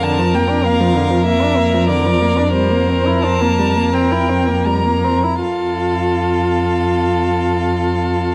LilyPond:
<<
  \new Staff \with { instrumentName = "Violin" } { \time 4/4 \key f \major \tempo 4 = 85 a''8 g''8 f''4 e''4 d''4 | c''4 a''4 g''4 bes''4 | f''1 | }
  \new Staff \with { instrumentName = "Violin" } { \time 4/4 \key f \major bes'1 | bes'2.~ bes'8 r8 | a'1 | }
  \new Staff \with { instrumentName = "Viola" } { \time 4/4 \key f \major d16 f16 bes16 d'16 bes16 f16 d16 f16 bes16 d'16 bes16 f16 d16 f16 bes16 d'16 | g16 bes16 c'16 e'16 c'16 bes16 g16 bes16 c'16 e'16 c'16 bes16 g16 bes16 c'16 e'16 | f'1 | }
  \new Staff \with { instrumentName = "Cello" } { \clef bass \time 4/4 \key f \major f,1~ | f,2.~ f,8 r8 | f,1 | }
>>